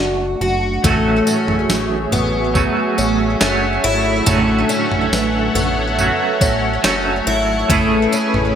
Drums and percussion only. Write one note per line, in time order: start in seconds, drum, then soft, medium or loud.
0.41 floor tom medium
0.84 kick loud
0.84 floor tom loud
0.84 tambourine medium
1.27 tambourine medium
1.48 floor tom medium
1.70 snare loud
1.70 tambourine medium
2.13 floor tom medium
2.13 tambourine medium
2.55 kick medium
2.55 floor tom medium
2.55 tambourine medium
2.98 tambourine medium
3.41 snare loud
3.41 tambourine loud
4.27 floor tom loud
4.27 tambourine medium
4.70 tambourine medium
4.92 floor tom medium
5.13 snare loud
5.13 tambourine medium
5.56 floor tom medium
5.56 tambourine medium
5.99 floor tom medium
5.99 tambourine medium
6.41 kick medium
6.41 tambourine medium
6.84 snare loud
6.84 tambourine loud
7.70 kick loud
7.70 floor tom loud
7.70 tambourine medium
8.12 tambourine medium
8.34 floor tom medium